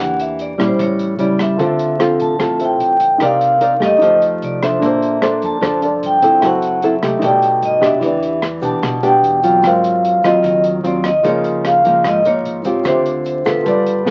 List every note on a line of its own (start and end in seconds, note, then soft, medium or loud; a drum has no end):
0.00 0.56 E2 medium
0.00 0.58 E3 medium
0.00 0.56 A#3 medium
0.00 0.56 D4 medium
0.00 0.56 G4 medium
0.00 0.18 F#5 medium
0.20 0.41 E5 medium
0.20 closed hi-hat soft
0.39 0.68 D5 medium
0.39 closed hi-hat soft
0.58 0.69 A#2 medium
0.58 1.16 G3 medium
0.58 1.16 C#4 medium
0.58 1.16 E4 medium
0.58 kick soft
0.58 cross-stick medium
0.58 closed hi-hat soft
0.67 0.80 C5 medium
0.79 1.17 A1 medium
0.79 1.58 A2 medium
0.79 1.22 C#5 medium
0.79 kick medium
0.79 closed hi-hat medium
0.99 closed hi-hat soft
1.19 1.57 C#2 medium
1.19 1.56 G3 soft
1.19 1.56 C#4 soft
1.19 1.57 E4 soft
1.19 1.39 D5 medium
1.19 closed hi-hat soft
1.39 1.97 E5 medium
1.39 kick soft
1.39 cross-stick medium
1.39 closed hi-hat soft
1.56 2.16 D2 medium
1.56 2.38 D3 soft
1.56 1.97 C4 medium
1.56 2.57 F4 soft
1.56 1.97 F4 soft
1.56 2.57 A4 soft
1.56 1.97 A4 medium
1.56 kick soft
1.56 closed hi-hat soft
1.61 2.59 C5 soft
1.61 2.59 E5 soft
1.79 closed hi-hat soft
1.99 2.37 C4 medium
1.99 2.37 F4 soft
1.99 2.37 A4 medium
1.99 cross-stick medium
1.99 closed hi-hat soft
2.20 2.30 A1 medium
2.20 2.62 A5 medium
2.20 kick soft
2.20 closed hi-hat soft
2.39 2.78 A1 medium
2.39 3.18 A2 soft
2.39 2.94 C4 medium
2.39 2.94 F4 soft
2.39 2.95 A4 medium
2.39 kick medium
2.39 cross-stick medium
2.39 closed hi-hat soft
2.58 3.20 F4 soft
2.58 3.20 A4 soft
2.58 3.21 C5 soft
2.58 3.21 E5 soft
2.58 closed hi-hat soft
2.65 3.25 G5 medium
2.80 3.18 A1 medium
2.80 closed hi-hat soft
3.00 kick soft
3.00 closed hi-hat soft
3.18 3.77 C2 medium
3.18 3.80 C4 medium
3.18 3.97 D#4 soft
3.18 3.58 D#4 soft
3.18 3.99 G4 soft
3.18 3.58 A#4 soft
3.18 4.00 A#4 soft
3.18 kick soft
3.18 cross-stick soft
3.18 closed hi-hat soft
3.22 3.58 D5 medium
3.22 4.01 D5 medium
3.22 3.84 F5 medium
3.41 closed hi-hat soft
3.61 3.73 D#4 soft
3.61 3.73 A#4 soft
3.61 3.73 D5 medium
3.61 closed hi-hat soft
3.80 3.91 G2 medium
3.80 4.58 A3 medium
3.80 4.58 D#4 medium
3.80 4.58 G4 medium
3.80 kick soft
3.80 cross-stick medium
3.80 closed hi-hat soft
3.85 4.21 D#5 medium
3.98 4.39 F2 medium
3.98 4.79 D#4 medium
3.98 4.79 G4 soft
3.98 kick soft
3.98 closed hi-hat medium
4.02 4.80 F3 medium
4.02 4.81 A4 soft
4.02 4.81 C5 medium
4.22 closed hi-hat soft
4.42 4.79 C2 medium
4.42 4.53 D5 medium
4.42 closed hi-hat soft
4.62 5.19 D4 soft
4.62 5.19 A4 medium
4.62 5.20 C5 medium
4.62 5.39 E5 medium
4.62 kick soft
4.62 cross-stick medium
4.62 closed hi-hat soft
4.79 5.38 A#1 medium
4.79 5.60 A#3 medium
4.79 5.79 D4 soft
4.79 5.80 F4 soft
4.79 kick medium
4.79 closed hi-hat soft
4.83 5.81 A4 soft
4.83 5.82 C5 medium
5.03 closed hi-hat soft
5.22 5.59 D4 medium
5.22 5.59 A4 medium
5.22 5.59 C5 medium
5.22 cross-stick medium
5.22 closed hi-hat soft
5.42 5.52 F2 medium
5.42 5.81 A5 medium
5.42 kick soft
5.42 closed hi-hat soft
5.61 6.00 F2 medium
5.61 6.40 F3 soft
5.61 6.19 D4 medium
5.61 6.19 A4 medium
5.61 6.19 C5 medium
5.61 kick medium
5.61 cross-stick medium
5.61 closed hi-hat soft
5.81 6.42 D4 soft
5.81 6.42 F4 soft
5.81 6.42 A4 soft
5.81 6.43 D5 soft
5.81 closed hi-hat soft
6.03 6.40 G1 medium
6.03 6.45 G5 medium
6.03 closed hi-hat soft
6.22 6.79 C4 medium
6.22 6.80 E4 medium
6.22 6.80 A4 medium
6.22 kick soft
6.22 closed hi-hat soft
6.40 6.99 F#1 medium
6.40 7.21 F#3 soft
6.40 7.20 E4 soft
6.40 7.21 F#4 soft
6.40 7.22 A4 soft
6.40 kick soft
6.40 cross-stick soft
6.40 closed hi-hat medium
6.46 7.23 C5 soft
6.46 6.86 F#5 medium
6.62 closed hi-hat soft
6.82 6.95 C4 soft
6.82 6.95 E4 medium
6.82 6.95 A4 medium
6.82 7.25 E5 medium
6.82 closed hi-hat soft
7.02 7.12 C2 medium
7.02 7.80 A3 medium
7.02 7.80 D#4 medium
7.02 7.80 G4 medium
7.02 kick soft
7.02 cross-stick medium
7.02 closed hi-hat soft
7.19 7.60 B1 medium
7.19 8.00 B2 medium
7.19 8.00 D#4 medium
7.19 8.00 G4 soft
7.19 kick soft
7.19 closed hi-hat medium
7.23 8.02 A4 soft
7.23 8.03 D5 medium
7.23 7.65 G5 medium
7.42 closed hi-hat soft
7.61 7.80 G1 medium
7.61 7.85 D#5 medium
7.61 closed hi-hat soft
7.80 8.01 F1 medium
7.80 8.39 B3 medium
7.80 8.39 D4 medium
7.80 8.39 G4 medium
7.80 kick soft
7.80 cross-stick medium
7.80 closed hi-hat soft
7.86 8.41 E5 medium
8.00 8.59 E2 medium
8.00 8.80 E3 soft
8.00 9.59 E4 soft
8.00 9.60 G4 soft
8.00 kick medium
8.00 closed hi-hat soft
8.00 shaker medium
8.04 9.61 B4 soft
8.04 9.62 D5 medium
8.22 closed hi-hat soft
8.22 shaker soft
8.42 cross-stick medium
8.42 closed hi-hat soft
8.42 shaker soft
8.62 8.72 B1 medium
8.62 9.00 B3 medium
8.62 9.00 D4 medium
8.62 9.00 G4 medium
8.62 9.01 A5 medium
8.62 kick soft
8.62 closed hi-hat soft
8.62 shaker medium
8.82 9.21 B1 medium
8.82 9.61 B2 soft
8.82 kick medium
8.82 cross-stick medium
8.82 closed hi-hat medium
8.82 shaker medium
9.03 9.40 B3 medium
9.03 9.40 D4 medium
9.03 9.40 G4 medium
9.03 9.67 G5 medium
9.03 closed hi-hat soft
9.03 shaker soft
9.23 9.61 E2 medium
9.23 closed hi-hat soft
9.43 10.21 F#3 medium
9.43 10.21 C4 medium
9.43 10.21 F4 medium
9.43 kick soft
9.43 closed hi-hat soft
9.43 shaker medium
9.61 10.20 G#1 medium
9.61 10.42 G#2 soft
9.61 11.20 F4 soft
9.61 11.22 A#4 soft
9.61 kick medium
9.61 cross-stick medium
9.61 closed hi-hat medium
9.61 shaker medium
9.66 11.23 C5 soft
9.66 10.27 F5 medium
9.83 closed hi-hat soft
9.83 shaker soft
10.05 closed hi-hat soft
10.23 10.33 D#2 medium
10.23 10.81 F#3 medium
10.23 10.81 C4 medium
10.23 10.82 F4 medium
10.23 10.62 D#5 medium
10.23 kick soft
10.23 cross-stick medium
10.23 closed hi-hat soft
10.23 shaker medium
10.43 10.82 D#2 medium
10.43 11.22 D#3 medium
10.43 kick soft
10.43 closed hi-hat medium
10.43 shaker medium
10.64 closed hi-hat soft
10.64 shaker soft
10.83 11.22 D#2 medium
10.83 11.10 F#3 soft
10.83 11.10 C4 medium
10.83 11.10 F4 medium
10.83 11.04 D5 medium
10.83 closed hi-hat soft
11.04 11.26 D#5 medium
11.04 kick soft
11.04 cross-stick medium
11.04 closed hi-hat soft
11.04 shaker medium
11.23 11.81 C#2 medium
11.23 12.03 C#3 medium
11.23 11.81 F3 soft
11.23 11.81 A#3 medium
11.23 11.82 D#4 medium
11.23 12.81 F4 soft
11.23 12.82 G#4 soft
11.23 kick medium
11.23 closed hi-hat medium
11.23 shaker medium
11.27 12.83 A#4 soft
11.27 11.67 C#5 medium
11.27 12.84 D#5 medium
11.44 closed hi-hat soft
11.44 shaker soft
11.65 12.07 F5 medium
11.65 cross-stick soft
11.65 closed hi-hat soft
11.84 11.94 G#1 medium
11.84 12.22 F3 medium
11.84 12.22 A#3 medium
11.84 12.22 D#4 medium
11.84 kick soft
11.84 closed hi-hat soft
11.84 shaker medium
12.04 12.42 G#1 medium
12.04 12.83 G#2 medium
12.04 12.27 D#5 medium
12.04 kick soft
12.04 cross-stick medium
12.04 closed hi-hat medium
12.04 shaker medium
12.24 12.62 F3 soft
12.24 12.62 A#3 medium
12.24 12.62 D#4 medium
12.24 12.88 C#5 medium
12.24 closed hi-hat soft
12.24 shaker soft
12.45 12.82 G#1 medium
12.45 closed hi-hat soft
12.64 13.42 C4 medium
12.64 13.42 F4 medium
12.64 13.43 G4 medium
12.64 kick soft
12.64 closed hi-hat soft
12.64 shaker medium
12.82 13.42 D2 medium
12.82 13.64 D3 medium
12.82 13.61 F4 soft
12.82 13.64 G4 soft
12.82 13.64 C5 soft
12.82 kick soft
12.82 cross-stick medium
12.82 closed hi-hat medium
12.82 shaker medium
12.87 13.48 C5 medium
12.87 13.66 E5 medium
13.04 closed hi-hat soft
13.04 shaker soft
13.24 closed hi-hat soft
13.24 shaker soft
13.45 13.55 A1 medium
13.45 14.03 B3 medium
13.45 14.03 F4 medium
13.45 14.03 A4 medium
13.45 14.10 B4 medium
13.45 kick soft
13.45 cross-stick medium
13.45 closed hi-hat soft
13.45 shaker medium
13.62 14.03 G1 medium
13.62 14.10 G3 soft
13.62 14.10 F4 soft
13.62 14.10 A4 soft
13.62 14.10 B4 soft
13.62 kick medium
13.62 closed hi-hat soft
13.62 shaker medium
13.68 14.10 D5 medium
13.86 closed hi-hat soft
13.86 shaker soft
14.05 14.10 G2 medium
14.05 14.10 B3 soft
14.05 14.10 F4 soft
14.05 14.10 A4 soft
14.05 snare soft